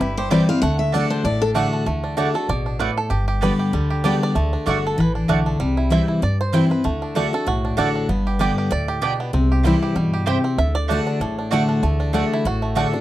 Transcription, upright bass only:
0.00 G1
0.62 D2
1.24 A1
1.86 D2
2.49 A1
3.10 G1
3.73 D2
4.36 D2
4.67 G1
4.98 A1
5.29 B1
5.60 C2
6.23 G2
6.85 D2
7.47 B1
7.79 A1
8.09 G1
8.71 D2
9.34 C2
9.95 G2
10.58 D2
11.20 A1
11.83 D2
12.45 A1

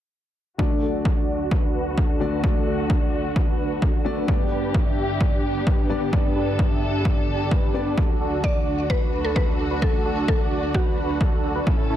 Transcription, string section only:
0.59 D2 D3 A3 F#4
4.28 G2 B3 G4
6.13 A4
7.97 D2 A3 F#4
11.67 A2 E3 C#4 A4

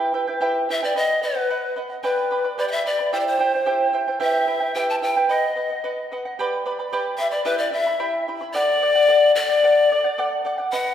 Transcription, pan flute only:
0.72 E5
0.84 D5
0.97 D#5
1.23 B4
2.04 B4
2.58 D5
2.68 E5 G5
2.86 D5
3.13 C5
3.20 D5
3.27 C5
4.22 E5
4.74 G5
4.90 A5
5.03 G5
5.29 D#5
7.18 E5
7.31 D5
7.44 B4
7.58 D5
7.73 E5
8.54 D5
9.35 D5
10.72 F#5

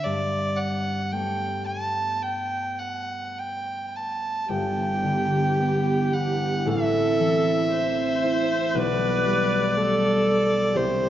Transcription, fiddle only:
0.04 D5
0.56 F#5
1.12 G5
1.66 A5
2.22 G5
2.79 F#5
3.39 G5
3.96 A5
4.50 G5
6.14 F#5
6.68 E5
8.69 E5
8.77 D5
10.76 C5

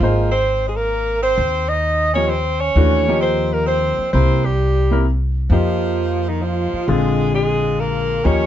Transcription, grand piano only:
0.03 A#3 D#4 G#4 C5
2.15 F3 A#3 D#4 G4
2.77 E3 A3 D4 F#4
3.08 F3 A#3 D#4 G4
4.14 A#3 C4 E4 G4
4.91 A#3 C4 E4 A#4
5.52 F3 A#3 D#4 G4
6.88 D3 G#3 C4 F4
8.25 F3 A#3 D#4 G4

